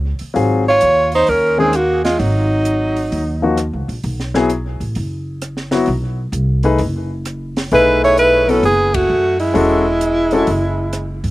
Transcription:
0.00 0.16 C#2 medium
0.19 muted upright bass stroke soft
0.19 open hi-hat soft
0.34 0.78 G#1 medium
0.34 0.62 F#3 medium
0.34 0.62 C4 medium
0.34 0.62 F4 medium
0.34 0.63 G#4 medium
0.34 open hi-hat soft
0.69 1.10 F4 medium
0.69 1.10 C#5 medium
0.81 1.25 D#2 medium
0.81 closed hi-hat medium
1.12 1.32 D#4 medium
1.12 1.31 C5 medium
1.12 open hi-hat soft
1.27 2.16 D#2 medium
1.27 1.60 C#4 medium
1.27 1.59 A#4 medium
1.27 open hi-hat soft
1.58 1.71 D#3 medium
1.58 1.72 G#3 medium
1.58 1.76 C4 medium
1.58 1.72 C#4 medium
1.58 1.72 G#4 medium
1.58 1.78 G#4 medium
1.73 2.04 A#3 medium
1.73 2.04 F#4 medium
1.73 cross-stick medium
1.73 closed hi-hat soft
2.04 2.20 G#3 medium
2.04 2.21 F4 medium
2.04 snare soft
2.04 open hi-hat soft
2.19 3.07 G#1 medium
2.19 3.57 F#3 medium
2.19 3.57 D#4 medium
2.19 open hi-hat soft
2.65 closed hi-hat medium
2.96 open hi-hat soft
3.12 3.69 D#2 medium
3.12 open hi-hat soft
3.42 3.56 F3 medium
3.42 3.56 A#3 medium
3.42 3.56 D#4 medium
3.42 3.56 F#4 medium
3.57 cross-stick medium
3.57 closed hi-hat medium
3.73 3.87 C#2 medium
3.88 4.02 A#1 medium
3.88 open hi-hat soft
4.04 4.76 B1 medium
4.04 open hi-hat soft
4.20 snare soft
4.34 4.48 F#3 medium
4.34 4.48 B3 medium
4.34 4.48 E4 medium
4.34 4.49 G#4 medium
4.34 snare soft
4.50 closed hi-hat medium
4.80 4.94 A1 medium
4.80 open hi-hat soft
4.95 5.84 F#1 medium
4.95 open hi-hat soft
5.42 cross-stick medium
5.42 closed hi-hat medium
5.57 snare soft
5.71 5.86 F#3 medium
5.71 5.86 B3 medium
5.71 5.86 E4 medium
5.71 5.86 F#4 medium
5.71 snare soft
5.71 open hi-hat soft
5.86 6.30 B1 medium
5.86 open hi-hat soft
6.32 6.75 C2 medium
6.32 closed hi-hat medium
6.63 6.78 A3 medium
6.63 6.78 D#4 medium
6.63 6.78 G#4 medium
6.63 6.78 B4 medium
6.63 open hi-hat soft
6.78 7.67 F#1 medium
6.78 open hi-hat soft
7.25 cross-stick medium
7.25 closed hi-hat medium
7.57 snare medium
7.57 open hi-hat soft
7.71 8.59 B1 medium
7.71 8.42 A3 medium
7.71 8.43 D#4 medium
7.71 8.01 E4 medium
7.71 8.43 G#4 medium
7.71 8.43 B4 medium
7.71 8.02 B4 medium
7.71 open hi-hat soft
8.04 8.17 E4 medium
8.04 8.18 C#5 loud
8.17 8.52 E4 medium
8.17 8.51 B4 loud
8.17 closed hi-hat medium
8.48 8.62 F#3 medium
8.48 8.62 B3 medium
8.48 8.64 C#4 medium
8.48 8.62 E4 soft
8.48 8.64 A4 medium
8.48 8.62 B4 medium
8.48 open hi-hat soft
8.63 9.06 F#1 medium
8.63 8.95 B3 medium
8.63 8.97 G#4 medium
8.63 open hi-hat soft
8.94 9.39 A3 medium
8.94 9.40 F#4 medium
8.94 kick medium
8.94 ride medium
9.09 9.52 F#2 medium
9.39 11.20 G#3 medium
9.39 11.20 E4 medium
9.39 open hi-hat soft
9.54 10.43 E1 medium
9.54 9.82 G#3 medium
9.54 9.82 C#4 medium
9.54 9.83 F#4 medium
9.54 9.83 A4 medium
9.54 open hi-hat soft
10.01 closed hi-hat medium
10.31 10.46 G#3 medium
10.31 10.46 C#4 medium
10.31 10.46 F#4 medium
10.31 10.46 A4 medium
10.31 open hi-hat soft
10.47 11.20 F#1 medium
10.47 open hi-hat soft
10.93 cross-stick medium
10.93 closed hi-hat medium
11.24 11.31 G#2 medium
11.24 kick soft
11.24 open hi-hat soft

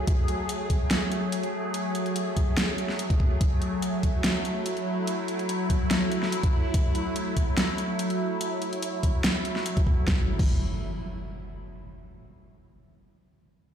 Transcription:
0.00 10.03 F#3 medium
0.00 10.03 A3 medium
0.00 3.39 G#4 medium
0.07 kick loud
0.07 closed hi-hat medium
0.28 closed hi-hat medium
0.49 closed hi-hat medium
0.70 kick medium
0.70 closed hi-hat medium
0.91 snare loud
0.91 closed hi-hat medium
1.12 closed hi-hat medium
1.32 closed hi-hat medium
1.43 closed hi-hat soft
1.74 closed hi-hat medium
1.95 closed hi-hat soft
2.06 closed hi-hat soft
2.16 closed hi-hat medium
2.37 kick medium
2.37 closed hi-hat medium
2.57 snare loud
2.57 closed hi-hat medium
2.78 closed hi-hat medium
2.89 snare soft
2.99 closed hi-hat medium
3.10 kick loud
3.10 closed hi-hat soft
3.20 kick medium
3.41 10.06 E4 medium
3.41 kick loud
3.41 closed hi-hat medium
3.62 closed hi-hat soft
3.82 closed hi-hat medium
4.03 kick medium
4.03 closed hi-hat medium
4.24 snare loud
4.24 closed hi-hat medium
4.45 closed hi-hat soft
4.66 closed hi-hat medium
4.77 closed hi-hat soft
5.07 closed hi-hat medium
5.28 closed hi-hat soft
5.39 closed hi-hat soft
5.49 closed hi-hat medium
5.70 kick medium
5.70 closed hi-hat medium
5.91 snare loud
5.91 closed hi-hat medium
6.12 closed hi-hat medium
6.23 snare soft
6.32 closed hi-hat medium
6.43 kick loud
6.43 closed hi-hat soft
6.74 kick loud
6.74 closed hi-hat medium
6.95 closed hi-hat soft
7.16 closed hi-hat medium
7.37 kick medium
7.37 closed hi-hat medium
7.57 snare loud
7.57 closed hi-hat medium
7.78 closed hi-hat medium
7.99 closed hi-hat medium
8.10 closed hi-hat soft
8.41 closed hi-hat medium
8.62 closed hi-hat medium
8.73 closed hi-hat soft
8.82 closed hi-hat medium
9.03 kick medium
9.03 closed hi-hat medium
9.24 snare loud
9.24 closed hi-hat medium
9.45 closed hi-hat medium
9.56 snare soft
9.66 closed hi-hat medium
9.77 kick loud
9.77 closed hi-hat soft
9.87 kick medium
10.07 kick loud
10.07 snare medium
10.07 impact medium
10.39 kick loud
10.39 crash medium

